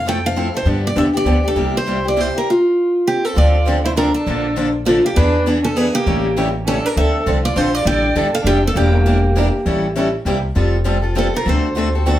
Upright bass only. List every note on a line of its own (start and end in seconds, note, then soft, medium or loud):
0.00 0.47 F2 medium
0.65 0.89 G2 medium
0.96 1.21 E2 medium
1.25 1.51 D2 medium
1.56 2.28 C2 medium
3.36 4.08 D2 medium
4.26 4.98 A#1 medium
5.16 5.88 E2 medium
6.06 6.78 A1 medium
6.96 7.20 D2 medium
7.26 7.52 C2 medium
7.56 7.82 A#1 medium
7.85 8.10 A1 medium
8.15 8.41 G1 medium
8.44 8.71 F1 medium
8.75 9.48 E1 medium
9.65 10.14 A1 medium
10.25 10.50 C2 medium
10.56 11.28 F1 medium
11.46 12.18 D2 medium